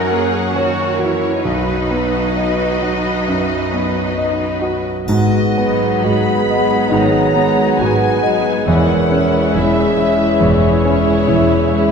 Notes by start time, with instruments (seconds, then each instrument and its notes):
Already playing: grand piano F#2, viola section F#3 C#4, cello section A#4, violin section A#4 C#5 F#5
0.12 grand piano A#3, cello section G#4
0.54 viola section D#3, cello section F#4, violin section A#4 C#5, grand piano C#5
0.99 viola section E3, cello section E4, grand piano F#4, violin section C#5
1.43 grand piano B1, viola section F#3 F#4, cello section D#4, violin section B4 D#5
1.91 grand piano B3
2.37 grand piano D#5
2.82 grand piano F#4
3.28 grand piano F#2
3.73 grand piano B3
4.18 grand piano D#5
4.62 grand piano F#4
5.07 double bass section G#1, cello section G#2, grand piano G#2, bassoon B3, french horn section B3 F#4, flute section F#4, clarinet G#4, violin section D#5, cor anglais F#5, triangle
5.55 viola section F#3 G#3, violin section B3 D#4, grand piano B3
6.03 double bass section G#1, cello section G#2, grand piano F#4, flute section D#5, violin section B5
6.47 viola section F#3 G#3, violin section B3 D#4, grand piano D#5
6.91 double bass section G#1, cello section G#2, grand piano D#3, flute section C#5, violin section A#5
7.35 viola section F#3 G#3, violin section B3 D#4, grand piano B3
7.78 double bass section G#1, cello section G#2, grand piano F#4, flute section B4, violin section G#5
8.23 viola section F#3 G#3, violin section B3 D#4, grand piano D#5
8.66 double bass section E1, grand piano E2, cello section E2, viola section E3 G#3, french horn section G#3 E4, violin section C#4 E4 F#5, bassoon C#4, clarinet G#4, flute section A#4, cor anglais E5
9.11 viola section E3 G#3, violin section C#4 E4, grand piano C#4
9.54 double bass section E1, cello section E2, grand piano E4, flute section G#4, violin section E5
9.97 viola section E3 G#3, violin section C#4 E4, grand piano E5
10.40 double bass section E1, grand piano E2, cello section E2, flute section E4, violin section C#5
10.84 viola section E3 G#3, violin section C#4 E4, grand piano C#4
11.28 double bass section E1, cello section E2, grand piano E4
11.69 viola section E3 G#3, violin section C#4 E4, grand piano E5